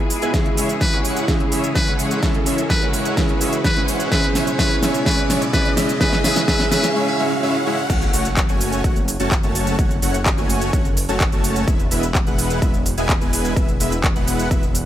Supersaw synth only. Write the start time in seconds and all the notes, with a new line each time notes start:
0.22 G#3 B3 E4 B4 G#5
0.34 G#3 C#4 E4 C#5 E5
0.57 G#3 C#4 E4 C#5 E5
0.93 G#3 C#4 E4 C#5 F#5
1.28 G#3 C#4 E4 C#5 E5
1.52 G#3 C#4 E4 C#5 E5
1.87 G#3 C#4 E4 C#5 F#5
2.23 G#3 C#4 E4 C#5 E5
2.46 G#3 C#4 E4 C#5 E5
2.82 G#3 C#4 E4 C#5 F#5
3.17 G#3 C#4 E4 C#5 E5
3.41 G#3 C#4 E4 C#5 E5
3.76 G#3 C#4 E4 C#5 F#5
4.12 G#3 C#4 E4 C#5 E5
4.35 G#3 C#4 E4 C#5 E5
4.59 G#3 C#4 E4 C#5 E5
4.83 G#3 C#4 E4 C#5 E5
5.06 G#3 C#4 E4 C#5 E5
5.30 G#3 C#4 E4 C#5 E5
5.53 G#3 C#4 E4 C#5 E5
5.77 G#3 C#4 E4 C#5 E5
6.00 G#3 C#4 E4 C#5 E5
6.24 G#3 C#4 E4 C#5 E5
6.48 G#3 C#4 E4 C#5 E5
6.72 G#3 C#4 E4 C#5 E5
6.95 G#3 C#4 E4 C#5 E5
7.19 G#3 C#4 E4 C#5 E5
7.43 G#3 C#4 E4 C#5 E5
7.66 G#3 C#4 E4 C#5 E5
7.90 A3 C#4 F#4 C#5 F#5
8.13 A3 C#4 F#4 C#5 F#5
8.49 A3 C#4 F#4 C#5 G#5
8.84 A3 C#4 F#4 C#5 F#5
9.20 A3 C#4 F#4 C#5 A5
9.43 A3 C#4 F#4 C#5 A5
9.79 A3 C#4 F#4 C#5 F#5
10.02 A3 C#4 F#4 C#5 F#5
10.38 A3 C#4 F#4 C#5 G#5
10.73 A3 C#4 F#4 C#5 F#5
11.09 A3 C#4 F#4 C#5 A5
11.32 A3 C#4 F#4 C#5 A5
11.68 G#3 B3 E4 B4 E5
11.91 G#3 B3 E4 B4 E5
12.27 G#3 B3 E4 B4 F#5
12.62 G#3 B3 E4 B4 E5
12.97 G#3 B3 E4 B4 G#5
13.21 G#3 B3 E4 B4 G#5
13.56 G#3 B3 E4 B4 E5
13.80 G#3 B3 E4 B4 E5
14.16 G#3 B3 E4 B4 F#5
14.51 G#3 B3 E4 B4 E5